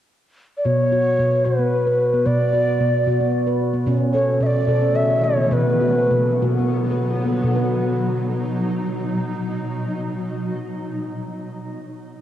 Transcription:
0.57 D5
0.65 B2 B3 C#5
0.92 F#4
1.19 B2 B3
1.45 B2 F#4 B4
1.59 B3
1.87 B4
2.14 B3
2.25 B2 B3 D5
2.53 F#4
2.80 B2 B3
3.07 B2 F#4
3.20 B3
3.47 B4
3.73 B3
3.85 B2 C#3 E3 A3 C#4
4.13 A4 C#5
4.40 B2 C#4 E5
4.46 D5
4.67 B2 A4
4.82 C#4
4.96 E5
5.10 A4
5.24 C#5
5.37 B3
5.51 B2 D3 F#3 B3 B4
5.81 F#4
6.11 B2 B3
6.42 B2 F#4
6.59 B3
6.91 B4
7.25 B3
7.43 B2 F#3 B3 D#4
7.48 D#4 F#4
7.56 B4

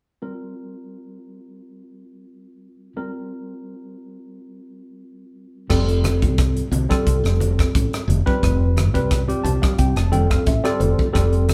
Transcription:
0.22 G3 C4 F4 A#4
2.97 G3 C4 F4 A#4
5.70 F1 G3 C4 F4 A4, kick, cross-stick, crash
5.89 closed hi-hat
6.04 cross-stick, closed hi-hat, low conga
6.22 C2, kick, closed hi-hat
6.38 kick, cross-stick, closed hi-hat
6.57 closed hi-hat
6.71 C2, closed hi-hat, low conga
6.89 G3 C4 F4 A4, kick, cross-stick, closed hi-hat, high conga
7.07 C2, kick, closed hi-hat
7.24 F1, cross-stick, closed hi-hat
7.40 closed hi-hat, low conga
7.59 kick, cross-stick, closed hi-hat
7.75 A1, kick, closed hi-hat
7.93 cross-stick, closed hi-hat
8.08 F1, closed hi-hat, low conga
8.26 G3 C4 F4 B4, kick, high conga
8.43 F1, kick, cross-stick, closed hi-hat
8.77 cross-stick, closed hi-hat, low conga
8.94 C2 G3 C4 F4 B4, kick, closed hi-hat
9.11 kick, cross-stick, closed hi-hat
9.28 G3 C4 F4 G4, closed hi-hat
9.44 C2 A5, closed hi-hat, high conga, low conga
9.62 F5, kick, cross-stick, closed hi-hat, high conga
9.78 C2 G5, kick, closed hi-hat
9.96 F1 A5, cross-stick, closed hi-hat
10.12 G3 C4 F4 A4 G5, closed hi-hat, high conga, low conga
10.30 F5, kick, cross-stick, closed hi-hat
10.46 A1 E5, kick, closed hi-hat
10.64 G3 C4 F4 A4 D5, cross-stick, closed hi-hat
10.80 F1 C5, closed hi-hat, low conga
10.99 kick, high conga
11.13 F1 G3 C4 F4 A4, kick, cross-stick, closed hi-hat
11.33 closed hi-hat
11.49 cross-stick, closed hi-hat, low conga

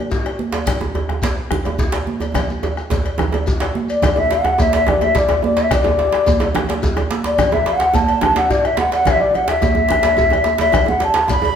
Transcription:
0.11 bombo low, djembe slap, djembe tone, shekere
0.26 bombo rim, cowbell
0.39 high conga
0.52 cowbell, djembe slap, shekere
0.66 bombo rim, bombo low, cowbell, djembe slap, high conga, low conga, djembe bass, shekere
0.81 djembe tone, high conga
0.95 cowbell, djembe tone
1.09 bombo rim, djembe tone
1.22 bombo rim, bombo low, cowbell, djembe slap, high conga, shekere
1.51 bombo rim, djembe tone, high conga, djembe bass, low conga
1.65 cowbell, high conga, djembe tone
1.79 bombo low, djembe slap, djembe tone, shekere
1.92 bombo rim, cowbell, djembe slap
2.07 high conga
2.20 cowbell, djembe tone, shekere
2.34 bombo rim, bombo low, cowbell, djembe slap, djembe tone, low conga, djembe bass, shekere
2.49 high conga, shekere
2.63 bombo rim, cowbell, djembe tone, shekere
2.77 bombo rim, high conga, shekere
2.90 bombo low, cowbell, djembe slap, djembe tone, high conga, shekere
3.06 bombo rim, cowbell
3.18 bombo rim, djembe slap, djembe tone, low conga, djembe bass, shekere
3.32 cowbell, djembe slap, djembe tone, high conga
3.47 bombo rim, bombo low, djembe slap, djembe tone, high conga, shekere
3.60 bombo rim, cowbell, djembe slap, high conga
3.75 bombo rim, high conga
3.89 D5, cowbell, shekere
4.02 bombo rim, bombo low, cowbell, djembe slap, high conga, djembe tone, low conga, djembe bass, shekere
4.16 E5, djembe tone, high conga
4.31 F#5, cowbell, djembe slap, djembe tone
4.44 bombo rim, djembe tone
4.58 E5, bombo low, cowbell, djembe slap, djembe tone, high conga, shekere
4.73 E5, cowbell, djembe slap
4.86 D5, bombo rim, djembe tone, high conga, djembe bass, low conga
5.01 E5, cowbell, djembe tone, high conga
5.15 D5, bombo low, djembe slap, djembe tone, shekere
5.29 bombo rim, cowbell, djembe tone
5.42 D5, djembe tone, high conga
5.57 E5, cowbell, djembe slap, shekere
5.71 D5, bombo rim, bombo low, cowbell, djembe slap, high conga, djembe bass, low conga, shekere
5.84 djembe tone, high conga
5.99 djembe slap, djembe tone
6.12 bombo rim, djembe slap
6.27 bombo rim, bombo low, cowbell, djembe slap, djembe tone, high conga, shekere
6.40 cowbell, djembe tone
6.55 bombo rim, djembe slap, high conga, low conga, djembe bass
6.69 cowbell, djembe slap, high conga
6.83 bombo low, djembe slap, djembe tone, shekere
6.97 bombo rim, cowbell, djembe tone
7.11 djembe slap, high conga
7.24 D5, cowbell, djembe slap, shekere
7.38 bombo rim, bombo low, cowbell, djembe slap, djembe tone, high conga, low conga, djembe bass, shekere
7.52 E5, djembe tone, high conga
7.66 F#5, cowbell, djembe slap, djembe tone
7.80 bombo rim, djembe slap
7.93 A5, bombo low, cowbell, djembe slap, djembe tone, high conga, shekere
8.08 cowbell
8.21 A5, bombo rim, djembe slap, high conga, djembe bass, low conga
8.36 F#5, cowbell, djembe slap, high conga
8.50 D5, bombo low, djembe slap, djembe tone, shekere
8.64 E5, bombo rim, cowbell
8.77 F#5, djembe slap, high conga
8.92 F#5, cowbell, djembe slap, shekere
9.05 E5, bombo rim, bombo low, cowbell, djembe slap, low conga, djembe bass, shekere
9.19 D5, bombo rim
9.34 F#5, cowbell, djembe slap, djembe tone
9.48 E5, bombo rim, djembe slap
9.62 bombo rim, bombo low, cowbell, djembe slap, djembe tone, high conga, shekere
9.75 djembe tone
9.88 djembe slap, low conga
9.90 bombo rim, djembe slap, djembe bass
10.03 cowbell, djembe slap, high conga, shekere
10.17 bombo low, djembe slap, djembe tone, shekere
10.30 bombo rim, cowbell, djembe slap, djembe tone, low conga
10.44 djembe slap, high conga, shekere
10.58 E5, cowbell, djembe slap, high conga, shekere
10.72 bombo rim, bombo low, cowbell, djembe slap, djembe tone, high conga, djembe bass, low conga, shekere
10.86 F#5, djembe tone, high conga
11.00 A5, cowbell, djembe slap, djembe tone
11.14 bombo rim, djembe slap
11.28 B5, bombo low, cowbell, djembe slap, djembe tone, high conga, shekere
11.42 cowbell, djembe tone

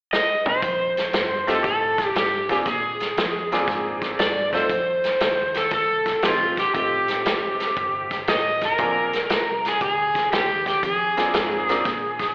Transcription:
0.13 D#5, snare
0.46 C5, mid tom
0.62 F2, kick, closed hi-hat
0.97 snare, closed hi-hat
1.13 G2, snare, closed hi-hat
1.47 A3 C4 D#4 F4 G4 A4, snare, closed hi-hat
1.64 A2 A4, kick, closed hi-hat
1.98 kick, snare, closed hi-hat
2.15 G2 G4, snare, closed hi-hat
2.49 A#3 C4 D4 F4 G4 G#4, kick, snare, closed hi-hat
2.65 A#2 G#4, kick, snare, closed hi-hat
3.00 snare, closed hi-hat
3.17 F2, snare, closed hi-hat
3.52 A#3 C4 D4 F4 G#4, snare, closed hi-hat
3.68 G#2, kick, snare, closed hi-hat
4.02 kick, snare, closed hi-hat
4.19 G2 D5, snare, closed hi-hat
4.53 A3 C4 D#4 F4 A4 C5, kick, snare, closed hi-hat
4.69 F2, kick, closed hi-hat
5.04 snare, closed hi-hat
5.20 D#2, snare, closed hi-hat
5.54 A4, snare, closed hi-hat
5.71 C2 A4, kick, snare, closed hi-hat
6.05 kick, snare, closed hi-hat
6.22 A#1 A3 C4 D#4 F4 G4, snare, closed hi-hat
6.57 G4, kick, snare, closed hi-hat
6.74 A1 A3 C4 D#4 F4 G4, kick, closed hi-hat
7.08 snare, closed hi-hat
7.25 F1, snare, closed hi-hat
7.60 snare, closed hi-hat
7.77 G1, kick, closed hi-hat
8.11 kick, snare, closed hi-hat
8.27 A1 D#5, snare, closed hi-hat
8.61 A#4, kick, snare, closed hi-hat
8.78 A#1 A#3 C4 D4 F4 G#4, kick, closed hi-hat
9.13 snare, closed hi-hat
9.30 C2, snare, closed hi-hat
9.65 G#4, snare, closed hi-hat
9.81 D2 G#4, kick, closed hi-hat
10.15 kick, snare, closed hi-hat
10.32 D#2 G4, snare, closed hi-hat
10.66 G4, kick, snare, closed hi-hat
10.83 F2 G#4, kick, closed hi-hat
11.17 A#3 C4 D4 F4 G#4, snare, closed hi-hat
11.34 G#2, snare, closed hi-hat
11.69 A#3 C4 D4 F4 A#4, snare, closed hi-hat
11.85 A#2, kick, snare, closed hi-hat
12.19 kick, snare, closed hi-hat

